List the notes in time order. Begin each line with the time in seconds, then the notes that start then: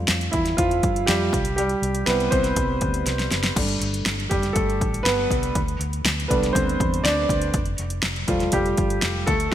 Already playing: G3 A3 F4
0.08 F2, snare, closed hi-hat
0.21 closed hi-hat
0.31 E2 E3 E4, kick, closed hi-hat
0.46 snare, closed hi-hat
0.57 F2 F3 F4, kick, closed hi-hat
0.71 closed hi-hat
0.83 G2, kick, closed hi-hat
0.96 closed hi-hat
1.06 F2 G3 G4, snare, closed hi-hat
1.33 C2, kick, closed hi-hat
1.45 closed hi-hat
1.56 G3 G4, closed hi-hat
1.69 closed hi-hat
1.82 C2, closed hi-hat
1.95 closed hi-hat
2.06 C2 G3 B3 C4 E4 B4, snare, closed hi-hat
2.20 closed hi-hat
2.31 C2 C4 C5, kick, closed hi-hat
2.44 snare, closed hi-hat
2.56 C2, kick, closed hi-hat
2.81 D2, kick, closed hi-hat
2.94 closed hi-hat
3.06 C2, snare, closed hi-hat
3.19 snare, closed hi-hat
3.31 F#1, snare, closed hi-hat
3.43 snare, closed hi-hat
3.56 G1 G3 A3 D4, kick, crash
3.68 closed hi-hat
3.81 G1, closed hi-hat
3.94 closed hi-hat
4.06 G1, snare, closed hi-hat
4.20 closed hi-hat
4.29 F#1 G3 G4, kick, closed hi-hat
4.43 snare, closed hi-hat
4.53 G1 A3 A4, kick, closed hi-hat
4.70 closed hi-hat
4.81 A1, kick, closed hi-hat
4.94 closed hi-hat
5.03 G1 B3 B4, snare, closed hi-hat
5.31 C2, kick, closed hi-hat
5.43 closed hi-hat
5.55 D2, kick, closed hi-hat
5.68 closed hi-hat
5.80 D2, closed hi-hat
5.93 closed hi-hat
6.05 D2, snare, closed hi-hat
6.20 closed hi-hat
6.28 C2 G3 A3 B3 D4 B4, kick, closed hi-hat
6.43 snare, closed hi-hat
6.53 D2 C4 C5, kick, closed hi-hat
6.69 closed hi-hat
6.80 E2, kick, closed hi-hat
6.94 closed hi-hat
7.04 D2 D4 D5, snare, closed hi-hat
7.29 D2, kick, closed hi-hat
7.42 closed hi-hat
7.54 F1, kick, closed hi-hat
7.65 closed hi-hat
7.78 F1, closed hi-hat
7.90 closed hi-hat
8.03 F1, snare, closed hi-hat
8.16 closed hi-hat
8.28 E1 F3 G3 A3 F4, kick, closed hi-hat
8.40 snare, closed hi-hat
8.52 F1 G3 G4, kick, closed hi-hat
8.66 closed hi-hat
8.77 G1, kick, closed hi-hat
8.90 closed hi-hat
9.02 F1, snare, closed hi-hat
9.27 D2 A3 A4, kick, closed hi-hat
9.40 closed hi-hat
9.51 F#4